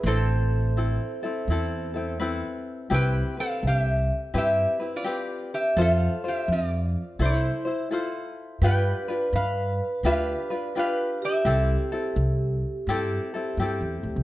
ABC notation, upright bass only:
X:1
M:4/4
L:1/16
Q:"Swing" 1/4=84
K:Am
V:1 name="Upright bass" clef=bass
A,,,8 E,,8 | [K:C] C,,2 z2 C,,4 G,,2 z6 | F,,2 z2 F,,4 C,,2 z6 | G,,2 z2 G,,4 D,,2 z6 |
C,,2 z2 C,,4 G,,2 z2 G,, E,, D,, C,, |]